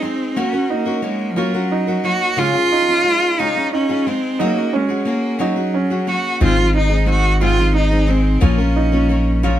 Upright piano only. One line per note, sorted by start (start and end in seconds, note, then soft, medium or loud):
0.00 0.36 D#4 medium
0.37 0.70 F#4 medium
0.70 1.36 D#4 medium
1.37 1.70 F4 medium
1.72 2.37 D#4 medium
2.39 2.71 F4 medium
2.72 3.38 D#4 medium
3.40 3.72 F4 medium
3.73 4.38 D#4 medium
4.39 4.72 D#4 medium
4.73 5.39 C#4 medium
5.41 5.73 D#4 medium
5.74 6.40 C#4 medium
6.41 6.74 F4 medium
6.75 7.40 D#4 medium
7.41 7.74 F4 medium
7.74 8.40 D#4 soft
8.42 8.75 F4 medium
8.76 9.41 D#4 medium
9.43 9.59 F4 medium